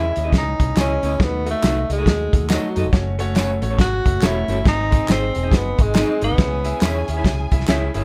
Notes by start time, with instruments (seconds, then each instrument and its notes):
Already playing: fingered electric bass E2, grand piano C#3 C#4 E4 G#4 D#5, tenor saxophone E4
0.16 fingered electric bass D#2, grand piano C#4 E4 G#4 D#5, closed hi-hat, tambourine
0.24 clean electric guitar C#4 E4 G#4 D#5
0.32 fingered electric bass C#2, grand piano C#4 E4 G#4 D#5, kick, snare, closed hi-hat, tambourine
0.38 tenor saxophone D#4
0.60 fingered electric bass C2, grand piano C#4 E4 G#4 D#5, kick, closed hi-hat, tambourine
0.76 fingered electric bass C#2, clean electric guitar C#4 E4 G#4 D#5, grand piano C#4 E4 G#4 D#5, snare, clap, closed hi-hat, tambourine
0.81 tenor saxophone C#4
1.03 fingered electric bass D2, clean electric guitar C#4 E4 G#4 D#5, grand piano C#4 E4 G#4 D#5, closed hi-hat, tambourine
1.20 fingered electric bass D#2, grand piano D#3 A3 D#4 F#4 D#5, tenor saxophone B3, kick, snare, closed hi-hat
1.46 grand piano A3 D#4 F#4 D#5, closed hi-hat, tambourine
1.51 tenor saxophone A3
1.62 fingered electric bass C2, grand piano A3 D#4 F#4, clean electric guitar D#4 F#4 A4 D#5, snare, clap, closed hi-hat, tambourine
1.89 fingered electric bass C#2, tenor saxophone G#3, grand piano A3 D#4 F#4 D#5, closed hi-hat, tambourine
1.98 clean electric guitar D#4 F#4 A4 D#5
2.06 fingered electric bass D#2, grand piano A3 D#4 F#4 D#5, kick, snare, closed hi-hat, tambourine
2.33 fingered electric bass D#2, grand piano A3 D#4 F#4 D#5, kick, closed hi-hat, tambourine
2.49 grand piano A3 D#4 F#4 D#5, clean electric guitar D#4 F#4 A4 D#5, snare, clap, closed hi-hat, tambourine
2.53 tenor saxophone F#3
2.75 fingered electric bass F#2, grand piano A3 D#4 F#4 D#5, clean electric guitar D#4 F#4 A4 D#5, closed hi-hat, tambourine
2.85 fingered electric bass F1
2.92 fingered electric bass F#1, grand piano A3 C#4 F#4 C#5, kick, snare, closed hi-hat, tambourine
3.19 grand piano A3 C#4 F#4 C#5, closed hi-hat, tambourine
3.35 grand piano A3 C#4 F#4 C#5, clean electric guitar C#4 F#4 A4 C#5, snare, clap, closed hi-hat, tambourine
3.62 fingered electric bass A1, grand piano A3 C#4 F#4 C#5, closed hi-hat, tambourine
3.70 clean electric guitar C#4 F#4 A4 C#5
3.78 fingered electric bass G#1, grand piano A3 C#4 F#4 C#5, tenor saxophone F#4, kick, snare, closed hi-hat, tambourine
4.05 fingered electric bass F#1, grand piano A3 C#4 F#4 E5, kick, closed hi-hat
4.21 fingered electric bass E1, grand piano A3 C#4 F#4 C#5, clean electric guitar C#4 F#4 A4 C#5, tenor saxophone E4, snare, clap, closed hi-hat, tambourine
4.48 fingered electric bass G1, grand piano A3 C#4 F#4 C#5, clean electric guitar C#4 F#4 A4 C#5, closed hi-hat, tambourine
4.64 fingered electric bass G#1, grand piano G#2 C4 D#4 G#4 D#5, kick, snare, closed hi-hat, tambourine
4.68 tenor saxophone D#4
4.91 grand piano C4 D#4 G#4 D#5, kick, closed hi-hat, tambourine
5.08 fingered electric bass G#1, grand piano C4 G#4, tenor saxophone C4, clean electric guitar D#4 G#4 C5 D#5, snare, clap, closed hi-hat, tambourine
5.35 fingered electric bass E1, grand piano C4 D#4 G#4 D#5, closed hi-hat, tambourine
5.43 clean electric guitar D#4 G#4 C5 D#5
5.51 fingered electric bass F#1, grand piano C4 D#4 G#4 D#5, kick, snare, closed hi-hat, tambourine
5.56 tenor saxophone B3
5.78 fingered electric bass G#1, grand piano C4 D#4 G#4 D#5, kick, closed hi-hat, tambourine
5.82 tenor saxophone G#3
5.94 grand piano C4 D#4 G#4 D#5, clean electric guitar D#4 G#4 C5 D#5, snare, clap, closed hi-hat, tambourine
6.21 fingered electric bass G#1, tenor saxophone B3, grand piano C4 D#4 G#4 D#5, clean electric guitar D#4 G#4 C5 D#5, closed hi-hat, tambourine
6.31 fingered electric bass C2
6.38 fingered electric bass C#2, grand piano C#3 C#4 E4 G#4 E5, string section G#4 G#5, kick, snare, closed hi-hat
6.64 grand piano C#4 E4 G#4 E5, closed hi-hat, tambourine
6.80 fingered electric bass E2, grand piano C#4 E4 G#4 E5, tenor saxophone C#4, clean electric guitar E4 G#4 C#5 E5, snare, clap, closed hi-hat, tambourine
7.08 fingered electric bass D#2, grand piano C#4 E4 G#4 E5, closed hi-hat, tambourine
7.17 clean electric guitar E4 G#4 C#5 E5
7.24 fingered electric bass C#2, grand piano C#4 E4 G#4 E5, kick, snare, closed hi-hat, tambourine
7.51 fingered electric bass C2, grand piano C#4 E4 G#4 E5, kick, closed hi-hat, tambourine
7.60 snare
7.67 fingered electric bass C#2, grand piano C#4 E4 G#4 E5, clean electric guitar E4 G#4 C#5 E5, snare, clap, closed hi-hat, tambourine
7.94 fingered electric bass G1, grand piano C#4 E4 G#4 E5, clean electric guitar E4 G#4 C#5 E5, closed hi-hat, tambourine